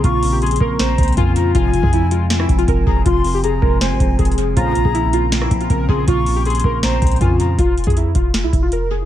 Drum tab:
HH |x-----------o-----------x--x--x--x--------------x-----------x--x--x--x--x-----------x-----------|x-----------x-----------x-----------x-----------x-----------x-----x-----x-----------------------|x-----------o-----------x-----------------------x-----------x-----------x---x---x---x-----------|x-----------x-----------x-----------x-----------x-----------x-----x-----x-----------------------|
SD |------------------------------------------------o-----------------------------------------------|------------------------------------------------o-----r-----------------------------------------|------------------------------------------------o-----------------------------------------------|------------------------------------------------o-----r-----------------------------------------|
BD |o-----------------------------------o-----------------------o-----------o-----------------------|o-----------------o-----------------------------------------o-----------o-----------o-----------|o-----------------------------------o-----------------------o-----------o-----------------------|o-----------------o-----------------------------------------o-----------o-----------o-----------|

HH |x-----------o-----------x--x--x--x--------------x-----------x--x--x--x--x-----------x-----------|x-----------x---x---x---x-----------x-----------x-----------x-----------x-----------------------|
SD |------------------------------------------------o-----------------------------------------------|------------------------------------------------o-----------------------------------------------|
BD |o-----------------------------------o-----------------------o-----------o-----------------------|o-----------------o-----------------o-----------------------o-----------------------------------|